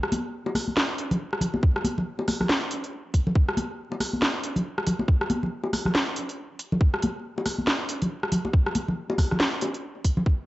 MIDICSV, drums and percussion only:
0, 0, Header, 1, 2, 480
1, 0, Start_track
1, 0, Tempo, 431655
1, 1811, Time_signature, 4, 2, 24, 8
1, 11633, End_track
2, 0, Start_track
2, 0, Title_t, "Drums"
2, 36, Note_on_c, 9, 37, 75
2, 133, Note_on_c, 9, 42, 74
2, 133, Note_on_c, 9, 63, 87
2, 147, Note_off_c, 9, 37, 0
2, 244, Note_off_c, 9, 42, 0
2, 244, Note_off_c, 9, 63, 0
2, 513, Note_on_c, 9, 60, 63
2, 610, Note_on_c, 9, 63, 67
2, 614, Note_on_c, 9, 37, 51
2, 614, Note_on_c, 9, 46, 87
2, 624, Note_off_c, 9, 60, 0
2, 721, Note_off_c, 9, 63, 0
2, 725, Note_off_c, 9, 37, 0
2, 725, Note_off_c, 9, 46, 0
2, 752, Note_on_c, 9, 63, 59
2, 853, Note_on_c, 9, 38, 120
2, 863, Note_off_c, 9, 63, 0
2, 964, Note_off_c, 9, 38, 0
2, 1094, Note_on_c, 9, 42, 76
2, 1205, Note_off_c, 9, 42, 0
2, 1236, Note_on_c, 9, 64, 96
2, 1237, Note_on_c, 9, 42, 34
2, 1348, Note_off_c, 9, 64, 0
2, 1349, Note_off_c, 9, 42, 0
2, 1477, Note_on_c, 9, 37, 75
2, 1567, Note_on_c, 9, 64, 87
2, 1572, Note_on_c, 9, 42, 75
2, 1588, Note_off_c, 9, 37, 0
2, 1678, Note_off_c, 9, 64, 0
2, 1684, Note_off_c, 9, 42, 0
2, 1709, Note_on_c, 9, 60, 46
2, 1711, Note_on_c, 9, 63, 71
2, 1811, Note_on_c, 9, 36, 124
2, 1821, Note_off_c, 9, 60, 0
2, 1823, Note_off_c, 9, 63, 0
2, 1922, Note_off_c, 9, 36, 0
2, 1957, Note_on_c, 9, 37, 75
2, 2051, Note_on_c, 9, 63, 86
2, 2053, Note_on_c, 9, 42, 74
2, 2068, Note_off_c, 9, 37, 0
2, 2162, Note_off_c, 9, 63, 0
2, 2165, Note_off_c, 9, 42, 0
2, 2200, Note_on_c, 9, 64, 80
2, 2312, Note_off_c, 9, 64, 0
2, 2433, Note_on_c, 9, 60, 61
2, 2532, Note_on_c, 9, 37, 53
2, 2532, Note_on_c, 9, 46, 87
2, 2536, Note_on_c, 9, 63, 71
2, 2545, Note_off_c, 9, 60, 0
2, 2644, Note_off_c, 9, 37, 0
2, 2644, Note_off_c, 9, 46, 0
2, 2647, Note_off_c, 9, 63, 0
2, 2672, Note_on_c, 9, 63, 59
2, 2676, Note_on_c, 9, 37, 62
2, 2677, Note_on_c, 9, 64, 76
2, 2772, Note_on_c, 9, 38, 118
2, 2783, Note_off_c, 9, 63, 0
2, 2787, Note_off_c, 9, 37, 0
2, 2788, Note_off_c, 9, 64, 0
2, 2883, Note_off_c, 9, 38, 0
2, 3012, Note_on_c, 9, 42, 72
2, 3123, Note_off_c, 9, 42, 0
2, 3157, Note_on_c, 9, 42, 33
2, 3268, Note_off_c, 9, 42, 0
2, 3491, Note_on_c, 9, 36, 62
2, 3492, Note_on_c, 9, 42, 73
2, 3602, Note_off_c, 9, 36, 0
2, 3603, Note_off_c, 9, 42, 0
2, 3634, Note_on_c, 9, 64, 84
2, 3731, Note_on_c, 9, 36, 118
2, 3745, Note_off_c, 9, 64, 0
2, 3842, Note_off_c, 9, 36, 0
2, 3876, Note_on_c, 9, 37, 82
2, 3970, Note_on_c, 9, 63, 86
2, 3972, Note_on_c, 9, 42, 76
2, 3987, Note_off_c, 9, 37, 0
2, 4081, Note_off_c, 9, 63, 0
2, 4083, Note_off_c, 9, 42, 0
2, 4356, Note_on_c, 9, 60, 57
2, 4451, Note_on_c, 9, 63, 59
2, 4453, Note_on_c, 9, 37, 54
2, 4453, Note_on_c, 9, 46, 91
2, 4467, Note_off_c, 9, 60, 0
2, 4562, Note_off_c, 9, 63, 0
2, 4564, Note_off_c, 9, 37, 0
2, 4564, Note_off_c, 9, 46, 0
2, 4596, Note_on_c, 9, 63, 61
2, 4692, Note_on_c, 9, 38, 118
2, 4707, Note_off_c, 9, 63, 0
2, 4803, Note_off_c, 9, 38, 0
2, 4932, Note_on_c, 9, 42, 75
2, 5043, Note_off_c, 9, 42, 0
2, 5071, Note_on_c, 9, 64, 82
2, 5075, Note_on_c, 9, 42, 35
2, 5182, Note_off_c, 9, 64, 0
2, 5186, Note_off_c, 9, 42, 0
2, 5315, Note_on_c, 9, 37, 83
2, 5412, Note_on_c, 9, 42, 76
2, 5417, Note_on_c, 9, 64, 88
2, 5427, Note_off_c, 9, 37, 0
2, 5523, Note_off_c, 9, 42, 0
2, 5528, Note_off_c, 9, 64, 0
2, 5551, Note_on_c, 9, 63, 59
2, 5554, Note_on_c, 9, 60, 52
2, 5651, Note_on_c, 9, 36, 110
2, 5663, Note_off_c, 9, 63, 0
2, 5665, Note_off_c, 9, 60, 0
2, 5762, Note_off_c, 9, 36, 0
2, 5796, Note_on_c, 9, 37, 81
2, 5892, Note_on_c, 9, 42, 76
2, 5893, Note_on_c, 9, 63, 83
2, 5907, Note_off_c, 9, 37, 0
2, 6003, Note_off_c, 9, 42, 0
2, 6004, Note_off_c, 9, 63, 0
2, 6038, Note_on_c, 9, 64, 80
2, 6150, Note_off_c, 9, 64, 0
2, 6266, Note_on_c, 9, 60, 57
2, 6372, Note_on_c, 9, 63, 62
2, 6373, Note_on_c, 9, 37, 54
2, 6373, Note_on_c, 9, 46, 92
2, 6378, Note_off_c, 9, 60, 0
2, 6483, Note_off_c, 9, 63, 0
2, 6484, Note_off_c, 9, 37, 0
2, 6484, Note_off_c, 9, 46, 0
2, 6509, Note_on_c, 9, 64, 83
2, 6517, Note_on_c, 9, 37, 63
2, 6613, Note_on_c, 9, 38, 112
2, 6620, Note_off_c, 9, 64, 0
2, 6628, Note_off_c, 9, 37, 0
2, 6724, Note_off_c, 9, 38, 0
2, 6852, Note_on_c, 9, 42, 77
2, 6964, Note_off_c, 9, 42, 0
2, 6996, Note_on_c, 9, 42, 35
2, 7107, Note_off_c, 9, 42, 0
2, 7331, Note_on_c, 9, 42, 77
2, 7442, Note_off_c, 9, 42, 0
2, 7476, Note_on_c, 9, 64, 89
2, 7570, Note_on_c, 9, 36, 112
2, 7587, Note_off_c, 9, 64, 0
2, 7682, Note_off_c, 9, 36, 0
2, 7715, Note_on_c, 9, 37, 77
2, 7811, Note_on_c, 9, 42, 80
2, 7824, Note_on_c, 9, 63, 87
2, 7826, Note_off_c, 9, 37, 0
2, 7923, Note_off_c, 9, 42, 0
2, 7935, Note_off_c, 9, 63, 0
2, 8204, Note_on_c, 9, 60, 64
2, 8291, Note_on_c, 9, 37, 54
2, 8291, Note_on_c, 9, 46, 92
2, 8294, Note_on_c, 9, 63, 58
2, 8315, Note_off_c, 9, 60, 0
2, 8402, Note_off_c, 9, 37, 0
2, 8402, Note_off_c, 9, 46, 0
2, 8405, Note_off_c, 9, 63, 0
2, 8433, Note_on_c, 9, 63, 58
2, 8530, Note_on_c, 9, 38, 108
2, 8544, Note_off_c, 9, 63, 0
2, 8641, Note_off_c, 9, 38, 0
2, 8771, Note_on_c, 9, 42, 83
2, 8882, Note_off_c, 9, 42, 0
2, 8916, Note_on_c, 9, 42, 37
2, 8920, Note_on_c, 9, 64, 89
2, 9027, Note_off_c, 9, 42, 0
2, 9031, Note_off_c, 9, 64, 0
2, 9155, Note_on_c, 9, 37, 80
2, 9251, Note_on_c, 9, 42, 84
2, 9252, Note_on_c, 9, 64, 82
2, 9266, Note_off_c, 9, 37, 0
2, 9362, Note_off_c, 9, 42, 0
2, 9363, Note_off_c, 9, 64, 0
2, 9394, Note_on_c, 9, 63, 57
2, 9395, Note_on_c, 9, 60, 54
2, 9490, Note_on_c, 9, 36, 111
2, 9505, Note_off_c, 9, 63, 0
2, 9506, Note_off_c, 9, 60, 0
2, 9602, Note_off_c, 9, 36, 0
2, 9635, Note_on_c, 9, 37, 76
2, 9730, Note_on_c, 9, 42, 83
2, 9733, Note_on_c, 9, 63, 86
2, 9746, Note_off_c, 9, 37, 0
2, 9841, Note_off_c, 9, 42, 0
2, 9844, Note_off_c, 9, 63, 0
2, 9879, Note_on_c, 9, 64, 76
2, 9990, Note_off_c, 9, 64, 0
2, 10115, Note_on_c, 9, 60, 68
2, 10207, Note_on_c, 9, 63, 64
2, 10211, Note_on_c, 9, 36, 60
2, 10211, Note_on_c, 9, 37, 52
2, 10211, Note_on_c, 9, 46, 94
2, 10227, Note_off_c, 9, 60, 0
2, 10319, Note_off_c, 9, 63, 0
2, 10322, Note_off_c, 9, 36, 0
2, 10323, Note_off_c, 9, 37, 0
2, 10323, Note_off_c, 9, 46, 0
2, 10356, Note_on_c, 9, 37, 60
2, 10365, Note_on_c, 9, 64, 84
2, 10450, Note_on_c, 9, 38, 116
2, 10467, Note_off_c, 9, 37, 0
2, 10476, Note_off_c, 9, 64, 0
2, 10561, Note_off_c, 9, 38, 0
2, 10690, Note_on_c, 9, 42, 85
2, 10699, Note_on_c, 9, 60, 63
2, 10801, Note_off_c, 9, 42, 0
2, 10810, Note_off_c, 9, 60, 0
2, 10834, Note_on_c, 9, 42, 39
2, 10946, Note_off_c, 9, 42, 0
2, 11170, Note_on_c, 9, 42, 85
2, 11171, Note_on_c, 9, 36, 59
2, 11281, Note_off_c, 9, 42, 0
2, 11282, Note_off_c, 9, 36, 0
2, 11310, Note_on_c, 9, 64, 95
2, 11411, Note_on_c, 9, 36, 101
2, 11421, Note_off_c, 9, 64, 0
2, 11523, Note_off_c, 9, 36, 0
2, 11633, End_track
0, 0, End_of_file